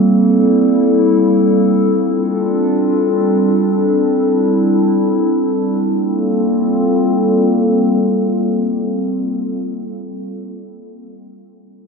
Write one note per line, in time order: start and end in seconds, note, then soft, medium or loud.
0.00 1.98 G3 medium
0.00 1.98 A#3 medium
0.00 1.98 C4 medium
0.00 5.85 A4 medium
0.08 2.00 E4 medium
2.02 5.85 G3 medium
2.02 5.85 C4 medium
2.02 5.85 D4 medium
2.02 3.93 F4 medium
3.95 5.87 E4 medium
5.89 10.36 G3 medium
5.89 10.36 A#3 medium
5.89 10.36 C4 medium
5.89 10.36 F4 medium
5.89 10.36 A4 medium